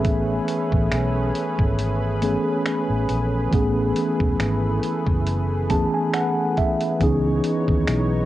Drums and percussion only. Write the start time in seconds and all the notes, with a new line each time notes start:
0.05 kick, closed hi-hat
0.48 closed hi-hat
0.72 kick
0.92 finger snap, closed hi-hat
1.35 closed hi-hat
1.59 kick
1.79 closed hi-hat
2.22 closed hi-hat
2.66 finger snap, closed hi-hat
3.09 closed hi-hat
3.53 kick, closed hi-hat
3.96 closed hi-hat
4.20 kick
4.40 finger snap, closed hi-hat
4.83 closed hi-hat
5.07 kick
5.27 closed hi-hat
5.70 kick, closed hi-hat
6.14 finger snap, closed hi-hat
6.57 kick, closed hi-hat
6.80 closed hi-hat
7.00 kick, closed hi-hat
7.44 closed hi-hat
7.68 kick
7.87 finger snap, closed hi-hat